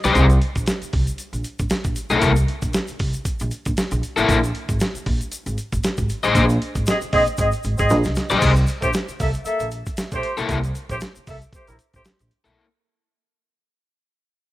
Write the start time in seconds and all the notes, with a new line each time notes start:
0.04 B1 G#4 C5 D#5, snare, closed hi-hat, shaker
0.15 C2, kick, closed hi-hat, shaker
0.30 closed hi-hat, shaker
0.42 closed hi-hat
0.55 A#1, kick, closed hi-hat, shaker
0.66 snare, closed hi-hat, shaker
0.82 muted upright bass stroke, closed hi-hat, shaker
0.93 C2, kick, open hi-hat
1.07 closed hi-hat, shaker
1.18 closed hi-hat, shaker
1.33 A#1, closed hi-hat, shaker
1.44 closed hi-hat, shaker
1.59 A#1, kick, closed hi-hat, shaker
1.70 muted upright bass stroke, snare, closed hi-hat, shaker
1.84 A#1, kick, closed hi-hat, shaker
1.96 closed hi-hat, shaker
2.10 B1 A#3 E4 A4, snare, closed hi-hat, shaker
2.21 C2, kick, closed hi-hat, shaker
2.36 closed hi-hat, shaker
2.48 closed hi-hat
2.62 A#1, kick, closed hi-hat, shaker
2.73 snare, closed hi-hat, shaker
2.88 muted upright bass stroke, closed hi-hat, shaker
2.99 C2, kick, open hi-hat
3.13 closed hi-hat, shaker
3.25 kick, closed hi-hat, shaker
3.39 A#1, closed hi-hat, shaker
3.51 closed hi-hat, shaker
3.65 A#1, kick, closed hi-hat, shaker
3.77 muted upright bass stroke, snare, closed hi-hat, shaker
3.91 A#1, closed hi-hat, shaker
4.03 closed hi-hat, shaker
4.16 A1 A#3 E4 A4, snare, closed hi-hat, shaker
4.29 A#1, kick, closed hi-hat, shaker
4.44 closed hi-hat, shaker
4.55 closed hi-hat
4.69 G#1, kick, closed hi-hat, shaker
4.80 snare, closed hi-hat, shaker
4.94 muted upright bass stroke, closed hi-hat, shaker
5.06 A#1, kick, open hi-hat
5.21 closed hi-hat, shaker
5.32 closed hi-hat, shaker
5.46 G#1, closed hi-hat, shaker
5.58 closed hi-hat, shaker
5.72 G#1, kick, closed hi-hat, shaker
5.84 muted upright bass stroke, snare, closed hi-hat, shaker
5.97 G#1, kick, closed hi-hat, shaker
6.09 closed hi-hat, shaker
6.23 A1 G#4 C5 D#5, snare, closed hi-hat, shaker
6.35 A#1, kick, closed hi-hat, shaker
6.49 closed hi-hat, shaker
6.62 closed hi-hat
6.75 G#1, kick, closed hi-hat, shaker
6.86 C4 G#4 D#5, snare, closed hi-hat, shaker
7.01 muted upright bass stroke, closed hi-hat, shaker
7.13 A#1 C4 G#4 D#5, kick, open hi-hat
7.26 closed hi-hat, shaker
7.38 G#1 C4 G#4 D#5, kick, closed hi-hat, shaker
7.52 closed hi-hat, shaker
7.63 G#1, closed hi-hat, shaker
7.78 G#1 C4 G#4 D#5, kick, closed hi-hat, shaker
7.90 A#1, snare, closed hi-hat, shaker
8.04 C2, snare, closed hi-hat, shaker
8.15 snare, closed hi-hat, shaker
8.30 A#1 G#4 C5 D#5, snare, closed hi-hat, shaker
8.42 C2, kick, closed hi-hat, crash, shaker
8.56 closed hi-hat, shaker
8.67 closed hi-hat, shaker
8.81 A#1 A3 G4 C5, kick, closed hi-hat, shaker
8.93 snare, closed hi-hat, shaker
9.08 muted upright bass stroke, closed hi-hat, shaker
9.20 C2 A#3 A4 E5, kick, open hi-hat, shaker
9.34 closed hi-hat, shaker
9.45 A#3 A4 E5, muted upright bass stroke, closed hi-hat, shaker
9.60 A#1, closed hi-hat, shaker
9.71 closed hi-hat, shaker
9.86 kick, closed hi-hat, shaker
9.97 muted upright bass stroke, snare, closed hi-hat, shaker
10.12 A#1 A3 G4 C5, kick, closed hi-hat, shaker
10.23 closed hi-hat
10.37 B1 A#3 E4 A4, snare, closed hi-hat, shaker
10.49 C2, kick, closed hi-hat, shaker
10.64 closed hi-hat, shaker
10.75 closed hi-hat, shaker
10.89 A#1 A3 G4 C5, kick, closed hi-hat, shaker
11.00 snare, closed hi-hat, shaker
11.15 muted upright bass stroke, closed hi-hat, shaker
11.27 C2 A#3 A4 E5, kick, open hi-hat, shaker
11.42 closed hi-hat, shaker
11.53 A3 G4 C5, kick, closed hi-hat, shaker
11.67 A#1 G3 E4 A#4, closed hi-hat, shaker
11.79 closed hi-hat, shaker
11.94 A#1 A3 G4 C5, kick, closed hi-hat, shaker
12.05 snare, closed hi-hat, shaker
12.19 A#1, closed hi-hat, shaker
12.31 closed hi-hat
12.44 B1 A#3 E4 A4, snare, closed hi-hat, shaker